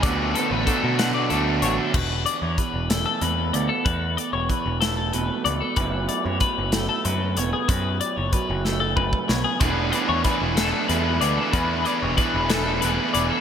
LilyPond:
<<
  \new Staff \with { instrumentName = "Clean electric guitar" } { \time 6/8 \key e \mixolydian \tempo 4. = 63 d''8 a'16 b'16 a'8 fis''16 d''16 a'8 cis''16 a'16 | b'8 d''16 cis''16 b'8 a'16 a'16 b'8 d''16 a'16 | b'8 d''16 cis''16 b'8 a'16 a'16 b'8 d''16 a'16 | b'8 d''16 cis''16 b'8 a'16 a'16 b'8 cis''16 gis'16 |
b'8 d''16 cis''16 b'8 a'16 a'16 b'8 cis''16 gis'16 | b'8 d''16 cis''16 b'8 a'16 a'16 b'8 d''16 a'16 | b'8 d''16 cis''16 b'8 a'16 a'16 b'8 d''16 a'16 | }
  \new Staff \with { instrumentName = "Overdriven electric guitar" } { \time 6/8 \key e \mixolydian <d fis a d'>4 <d fis a d'>8 <d fis a d'>8 <d fis a d'>4 | r2. | r2. | r2. |
r2. | <e b d' gis'>8 <e b d' gis'>8 <e b d' gis'>8 <e b d' gis'>8 <e b d' gis'>8 <e b d' gis'>8 | <e b d' gis'>8 <e b d' gis'>8 <e b d' gis'>8 <e b d' gis'>8 <e b d' gis'>8 <e b d' gis'>8 | }
  \new Staff \with { instrumentName = "Clean electric guitar" } { \time 6/8 \key e \mixolydian << { <d b fis'>8 b4 b8 fis'8 fis'8 | r4. a4 b8 | r4. a4 a16 b16 | <fis a b e'>4. a4 b8 |
r4. a4 b8 | <e a b d'>4. a4 b8 | r4. a4 b8 | } \\ { d,4 d2 | e,4 e4 b,4 | e,4 e4 b,4 | fis,4 fis4 cis4 |
fis,4 fis4 cis4 | e,4 e4 b,4 | e,4 e4 b,4 | } >> }
  \new Staff \with { instrumentName = "Picked electric bass" } { \clef bass \time 6/8 \key e \mixolydian d,8 r16 a,,16 r16 b,8. d,8 a,,16 r16 | e,,8 r16 e,16 r16 e,,8 r16 e,8 d,16 r16 | e,8 r16 e,,16 r16 e,,8. e,,16 r16 cis,16 r16 | fis,,8 r16 fis,16 r16 fis,,8 r16 fis,8 e,,16 r16 |
fis,8 r16 fis,,16 r16 fis,,8. fis,,16 r16 b,,16 r16 | e,,8 r16 e,16 r16 e,,8 r16 e,8 d,16 r16 | e,8 r16 e,,16 r16 e,,8. e,,16 r16 e,,16 r16 | }
  \new DrumStaff \with { instrumentName = "Drums" } \drummode { \time 6/8 <hh bd>8 hh8 <hh bd>8 <hh sn>8 hh8 hh8 | <cymc bd>8 hh8 <hh bd>8 <hh sn>8 hh8 hh8 | <hh bd>8 hh8 <hh bd>8 <hh sn>8 hh8 hh8 | <hh bd>8 hh8 <hh bd>8 <hh sn>8 hh8 hh8 |
<hh bd>8 hh8 <hh bd>8 sn8 bd16 bd16 sn8 | <hh bd>8 hh8 <hh bd>8 <hh sn>8 hh8 hh8 | <hh bd>8 hh8 <hh bd>8 <hh sn>8 hh8 hh8 | }
>>